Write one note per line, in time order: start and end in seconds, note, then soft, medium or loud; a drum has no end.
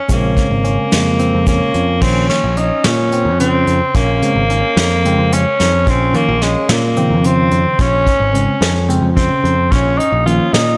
0.00 0.11 C#4 medium
0.08 0.35 A#1 medium
0.08 0.86 C#3 medium
0.08 0.86 G#3 medium
0.08 1.45 A#3 medium
0.08 0.87 C4 medium
0.08 0.47 C#4 medium
0.08 kick loud
0.08 closed hi-hat medium
0.08 shaker soft
0.37 kick medium
0.37 closed hi-hat medium
0.51 0.77 G#1 medium
0.64 1.02 C#4 medium
0.64 closed hi-hat medium
0.92 1.31 F2 medium
0.92 1.69 C#3 medium
0.92 1.69 G#3 medium
0.92 1.70 A#3 medium
0.92 snare medium
0.92 closed hi-hat medium
0.92 shaker soft
1.19 1.38 C4 medium
1.19 closed hi-hat medium
1.19 shaker soft
1.34 1.60 F2 medium
1.47 2.03 A#3 medium
1.47 1.85 C#4 medium
1.47 kick loud
1.47 closed hi-hat medium
1.47 shaker soft
1.74 2.00 F2 medium
1.74 closed hi-hat soft
2.01 2.28 A#1 medium
2.01 2.41 D#3 medium
2.01 2.41 F3 medium
2.01 2.41 A#3 medium
2.01 2.28 C4 medium
2.01 2.40 C#4 medium
2.01 kick loud
2.01 crash medium
2.29 2.59 C#4 medium
2.29 snare soft
2.29 closed hi-hat medium
2.44 2.70 A#1 medium
2.57 2.95 C#4 medium
2.57 2.86 D#4 medium
2.57 closed hi-hat medium
2.84 3.27 A#2 medium
2.84 3.39 C#4 medium
2.84 snare medium
2.84 closed hi-hat medium
3.12 3.32 C4 medium
3.12 closed hi-hat medium
3.25 3.64 F2 medium
3.40 3.78 C#3 medium
3.40 3.97 C4 medium
3.40 closed hi-hat medium
3.67 3.80 F2 medium
3.67 closed hi-hat soft
3.95 4.21 A#1 medium
3.95 5.34 A#3 medium
3.95 4.33 C#4 medium
3.95 kick loud
3.95 closed hi-hat medium
4.22 4.41 C#3 medium
4.22 4.42 G#3 medium
4.22 4.42 C4 medium
4.22 closed hi-hat medium
4.36 4.62 G#1 medium
4.50 4.88 C#4 medium
4.50 closed hi-hat medium
4.77 5.15 F2 medium
4.77 snare medium
4.77 closed hi-hat medium
5.05 5.44 C#3 medium
5.05 5.44 G#3 medium
5.05 5.44 C4 medium
5.05 5.24 C4 medium
5.05 closed hi-hat medium
5.18 5.44 F2 medium
5.32 5.90 C#4 medium
5.32 5.71 C#4 medium
5.32 closed hi-hat medium
5.60 5.86 F2 medium
5.60 snare soft
5.60 closed hi-hat medium
5.87 6.13 A#1 medium
5.87 6.17 C4 medium
5.87 6.25 C#4 medium
5.87 kick loud
5.87 closed hi-hat medium
6.13 6.33 D#3 medium
6.13 6.34 F3 medium
6.13 6.34 A#3 medium
6.13 6.44 A#3 medium
6.13 closed hi-hat medium
6.29 6.54 A#1 medium
6.42 6.70 G#3 medium
6.42 6.80 C#4 medium
6.42 snare soft
6.42 closed hi-hat medium
6.69 7.12 A#2 medium
6.69 7.27 A#3 medium
6.69 snare medium
6.69 closed hi-hat medium
6.96 7.75 C#3 medium
6.96 7.74 D#3 medium
6.96 7.74 F3 medium
6.96 7.16 C4 medium
6.96 closed hi-hat medium
7.10 7.49 F2 medium
7.24 7.62 C#3 medium
7.24 7.82 C4 medium
7.24 closed hi-hat medium
7.51 7.65 F2 medium
7.51 closed hi-hat soft
7.79 8.05 A#1 medium
7.79 8.18 C#4 medium
7.79 8.91 C#4 medium
7.79 kick loud
7.79 closed hi-hat medium
8.07 kick medium
8.07 closed hi-hat medium
8.20 8.46 G#1 medium
8.33 8.53 C#3 medium
8.33 8.54 G#3 medium
8.33 8.54 C4 medium
8.33 8.72 C#4 medium
8.33 closed hi-hat medium
8.61 9.00 F2 medium
8.61 snare medium
8.61 closed hi-hat medium
8.89 9.08 C#3 medium
8.89 9.09 G#3 medium
8.89 9.08 C4 medium
8.89 9.09 C4 medium
8.89 closed hi-hat medium
9.02 9.28 F2 medium
9.16 9.54 C#3 medium
9.16 9.72 C4 medium
9.16 kick medium
9.16 closed hi-hat medium
9.44 9.70 F2 medium
9.44 closed hi-hat medium
9.71 9.98 A#1 medium
9.71 9.99 C#4 medium
9.71 10.09 C#4 medium
9.71 kick loud
9.71 closed hi-hat medium
9.98 10.25 D#4 medium
9.98 closed hi-hat medium
10.12 10.39 A#1 medium
10.25 10.46 D#3 medium
10.25 10.46 F3 medium
10.25 10.46 A#3 medium
10.25 10.64 C#4 medium
10.25 10.55 F4 medium
10.25 closed hi-hat medium
10.53 10.77 A#2 medium
10.53 10.77 D#4 medium
10.53 snare medium
10.53 closed hi-hat medium